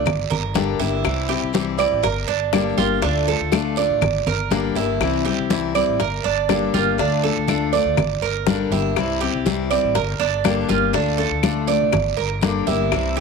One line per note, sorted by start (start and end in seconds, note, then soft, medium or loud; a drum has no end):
0.00 0.29 D5 medium
0.06 0.29 G1 loud
0.06 muted steel-string acoustic guitar stroke medium
0.06 high bongo medium
0.06 high conga soft
0.06 low conga medium
0.06 long guiro medium
0.06 claves medium
0.30 0.78 G1 medium
0.30 0.79 A#4 medium
0.30 high conga soft
0.30 low conga medium
0.54 0.79 D3 medium
0.54 0.79 G3 medium
0.54 0.79 A#3 medium
0.54 0.80 D4 medium
0.54 0.78 G4 medium
0.54 high bongo medium
0.54 low bongo medium
0.54 high conga medium
0.54 short guiro medium
0.79 1.04 G1 loud
0.79 1.04 A#3 soft
0.79 1.04 D4 soft
0.79 1.28 E4 medium
0.79 1.04 G4 medium
0.79 short guiro medium
1.04 1.40 C2 loud
1.04 1.28 C3 medium
1.04 1.29 E3 medium
1.04 1.29 G3 medium
1.04 1.29 C4 medium
1.04 1.28 E4 medium
1.04 high bongo medium
1.04 high conga soft
1.04 long guiro medium
1.04 claves medium
1.29 1.53 G3 soft
1.29 1.53 C4 soft
1.29 1.53 E4 soft
1.29 1.77 G4 medium
1.29 high bongo soft
1.29 high conga soft
1.42 1.89 C2 medium
1.53 1.77 C3 medium
1.53 1.78 E3 medium
1.53 1.78 G3 medium
1.53 1.78 C4 medium
1.53 1.76 E4 medium
1.53 high bongo medium
1.53 high conga loud
1.53 short guiro medium
1.77 2.02 G3 soft
1.77 2.03 C4 soft
1.77 2.02 E4 medium
1.77 2.03 D5 medium
1.77 high bongo soft
1.77 high conga soft
1.77 short guiro medium
1.77 claves medium
1.92 2.03 A1 medium
2.03 2.28 G1 loud
2.03 2.28 A#4 medium
2.03 muted steel-string acoustic guitar stroke medium
2.03 high bongo medium
2.03 high conga soft
2.03 long guiro medium
2.28 2.76 G1 medium
2.28 2.76 D4 medium
2.28 high conga soft
2.53 2.77 D3 medium
2.53 2.77 G3 medium
2.53 2.78 A#3 medium
2.53 2.77 D4 medium
2.53 2.76 G4 medium
2.53 high bongo medium
2.53 low bongo medium
2.53 high conga medium
2.53 short guiro medium
2.53 claves medium
2.77 3.02 G1 medium
2.77 3.02 A#3 soft
2.77 3.02 D4 medium
2.77 3.02 F4 medium
2.77 3.01 G4 soft
2.77 high bongo soft
2.77 high conga medium
2.77 short guiro medium
3.02 3.38 D2 loud
3.02 3.26 D3 medium
3.02 3.27 A3 medium
3.02 3.27 D4 medium
3.02 3.26 F4 medium
3.02 high bongo medium
3.02 high conga soft
3.02 long guiro medium
3.27 3.52 A3 soft
3.27 3.52 D4 soft
3.27 3.51 F4 medium
3.27 3.76 A4 medium
3.27 high conga soft
3.40 3.87 D2 medium
3.52 3.76 D3 medium
3.52 3.76 A3 medium
3.52 3.77 D4 medium
3.52 3.77 F4 medium
3.52 high bongo medium
3.52 high conga loud
3.52 short guiro medium
3.52 claves medium
3.76 4.02 A3 soft
3.76 4.01 D4 soft
3.76 4.01 F4 medium
3.76 4.25 D5 medium
3.76 short guiro medium
3.90 4.01 A1 medium
4.01 4.26 G1 loud
4.01 muted steel-string acoustic guitar stroke medium
4.01 high bongo medium
4.01 high conga soft
4.01 low conga medium
4.01 long guiro medium
4.01 claves medium
4.26 4.73 G1 medium
4.26 4.75 A#4 medium
4.26 high conga soft
4.26 low conga medium
4.51 4.75 D3 medium
4.51 4.75 G3 medium
4.51 4.76 A#3 medium
4.51 4.76 D4 medium
4.51 4.74 G4 medium
4.51 high bongo medium
4.51 low bongo medium
4.51 high conga medium
4.51 short guiro medium
4.76 4.99 G1 loud
4.76 5.01 A#3 soft
4.76 5.00 D4 medium
4.76 5.24 E4 medium
4.76 5.00 G4 medium
4.76 short guiro medium
5.00 5.36 C2 loud
5.00 5.25 C3 medium
5.00 5.25 E3 medium
5.00 5.25 G3 medium
5.00 5.25 C4 medium
5.00 5.24 E4 medium
5.00 high bongo medium
5.00 high conga soft
5.00 long guiro medium
5.00 claves medium
5.25 5.50 G3 soft
5.25 5.50 C4 soft
5.25 5.49 E4 medium
5.25 5.73 G4 medium
5.25 high bongo soft
5.25 high conga soft
5.38 5.85 C2 medium
5.50 5.74 C3 medium
5.50 5.74 E3 medium
5.50 5.74 G3 medium
5.50 5.74 C4 medium
5.50 5.73 E4 medium
5.50 high bongo medium
5.50 high conga medium
5.50 short guiro medium
5.75 5.99 G3 soft
5.75 5.99 C4 soft
5.75 5.99 E4 soft
5.75 5.99 D5 medium
5.75 high bongo soft
5.75 high conga soft
5.75 short guiro medium
5.75 claves medium
5.87 5.99 A1 medium
5.99 6.23 G1 loud
5.99 6.24 A#4 medium
5.99 muted steel-string acoustic guitar stroke medium
5.99 high bongo medium
5.99 high conga soft
5.99 long guiro medium
6.24 6.72 G1 medium
6.24 6.72 D4 medium
6.24 high conga soft
6.49 6.73 D3 medium
6.49 6.73 G3 medium
6.49 6.74 A#3 medium
6.49 6.74 D4 medium
6.49 6.73 G4 medium
6.49 high bongo medium
6.49 low bongo medium
6.49 high conga medium
6.49 short guiro medium
6.49 claves medium
6.74 6.98 G1 medium
6.74 6.98 A#3 soft
6.74 6.98 D4 medium
6.74 6.98 F4 medium
6.74 6.98 G4 medium
6.74 high bongo soft
6.74 high conga medium
6.74 short guiro medium
6.98 7.34 D2 loud
6.98 7.22 D3 medium
6.98 7.22 A3 medium
6.98 7.23 D4 medium
6.98 7.22 F4 medium
6.98 high bongo medium
6.98 long guiro medium
7.23 7.47 A3 soft
7.23 7.48 D4 soft
7.23 7.47 F4 soft
7.23 7.71 A4 medium
7.23 high conga soft
7.35 7.83 D2 medium
7.48 7.72 D3 medium
7.48 7.72 A3 medium
7.48 7.72 D4 medium
7.48 7.72 F4 medium
7.48 high bongo medium
7.48 high conga medium
7.48 short guiro medium
7.48 claves medium
7.73 7.98 A3 soft
7.73 7.97 D4 soft
7.73 7.97 F4 soft
7.73 8.21 D5 medium
7.73 short guiro medium
7.85 7.96 D2 medium
7.97 8.21 G1 loud
7.97 muted steel-string acoustic guitar stroke medium
7.97 high bongo medium
7.97 high conga soft
7.97 low conga medium
7.97 long guiro medium
7.97 claves medium
8.21 8.69 G1 medium
8.21 8.70 A#4 medium
8.21 high conga soft
8.47 8.71 D3 medium
8.47 8.71 G3 medium
8.47 8.71 A#3 medium
8.47 8.72 D4 medium
8.47 8.71 G4 medium
8.47 high bongo medium
8.47 low bongo medium
8.47 high conga medium
8.47 short guiro medium
8.71 8.95 G1 loud
8.71 8.97 A#3 soft
8.71 8.96 D4 medium
8.71 9.20 E4 medium
8.71 8.96 G4 medium
8.71 high conga medium
8.71 short guiro medium
8.96 9.31 C2 loud
8.96 9.20 C3 medium
8.96 9.21 E3 medium
8.96 9.21 G3 medium
8.96 9.21 C4 medium
8.96 9.20 E4 medium
8.96 high bongo medium
8.96 high conga soft
8.96 long guiro medium
8.96 claves medium
9.21 9.45 G3 soft
9.21 9.46 C4 soft
9.21 9.45 E4 soft
9.21 9.69 G4 medium
9.21 high bongo soft
9.21 high conga soft
9.33 9.80 C2 medium
9.45 9.69 C3 medium
9.45 9.70 E3 medium
9.45 9.70 G3 medium
9.45 9.70 C4 medium
9.45 9.69 E4 medium
9.45 high bongo medium
9.45 high conga medium
9.45 short guiro medium
9.70 9.95 G3 soft
9.70 9.95 C4 soft
9.70 9.94 E4 medium
9.70 9.95 D5 medium
9.70 high bongo soft
9.70 high conga soft
9.70 short guiro medium
9.70 claves medium
9.83 9.94 A1 medium
9.95 10.19 G1 loud
9.95 10.19 A#4 medium
9.95 muted steel-string acoustic guitar stroke medium
9.95 high bongo medium
9.95 high conga soft
9.95 long guiro medium
10.19 10.67 G1 medium
10.19 10.68 D4 medium
10.19 high conga soft
10.44 10.68 D3 medium
10.44 10.69 G3 medium
10.44 10.69 A#3 medium
10.44 10.69 D4 medium
10.44 10.67 G4 medium
10.44 high bongo medium
10.44 low bongo medium
10.44 high conga medium
10.44 short guiro medium
10.44 claves medium
10.68 10.93 G1 loud
10.68 10.94 A#3 soft
10.68 10.93 D4 soft
10.68 10.93 F4 medium
10.68 10.93 G4 medium
10.68 high bongo soft
10.68 high conga medium
10.68 short guiro medium
10.93 11.29 D2 loud
10.93 11.18 D3 medium
10.93 11.18 A3 medium
10.93 11.18 D4 medium
10.93 11.17 F4 medium
10.93 high bongo medium
10.93 high conga soft
10.93 long guiro medium
11.18 11.42 A3 soft
11.18 11.43 D4 soft
11.18 11.42 F4 medium
11.18 11.66 A4 medium
11.18 high conga soft
11.30 11.78 D2 medium
11.43 11.67 D3 medium
11.43 11.67 A3 medium
11.43 11.67 D4 medium
11.43 11.66 F4 medium
11.43 high bongo medium
11.43 high conga loud
11.43 short guiro medium
11.43 claves medium
11.67 11.92 A3 soft
11.67 11.92 D4 soft
11.67 11.91 F4 soft
11.67 12.16 D5 medium
11.67 short guiro medium
11.81 11.92 C2 medium
11.92 12.16 G1 loud
11.92 muted steel-string acoustic guitar stroke medium
11.92 high bongo medium
11.92 high conga soft
11.92 low conga medium
11.92 long guiro medium
11.92 claves medium
12.17 12.65 G1 medium
12.17 12.65 A#4 medium
12.17 high conga soft
12.42 12.66 D3 medium
12.42 12.66 G3 medium
12.42 12.67 A#3 medium
12.42 12.67 D4 medium
12.42 12.66 G4 medium
12.42 high bongo medium
12.42 low bongo medium
12.42 high conga medium
12.42 short guiro medium
12.67 12.91 G1 loud
12.67 12.92 A#3 soft
12.67 12.92 D4 medium
12.67 13.15 E4 medium
12.67 12.91 G4 medium
12.67 high conga medium
12.67 short guiro medium
12.92 13.20 C2 loud
12.92 13.16 C3 medium
12.92 13.16 E3 medium
12.92 13.16 G3 medium
12.92 13.16 C4 medium
12.92 13.16 E4 medium
12.92 high bongo medium
12.92 high conga soft
12.92 long guiro medium
12.92 claves medium
13.17 13.20 E4 soft
13.17 13.20 G4 medium
13.17 high bongo soft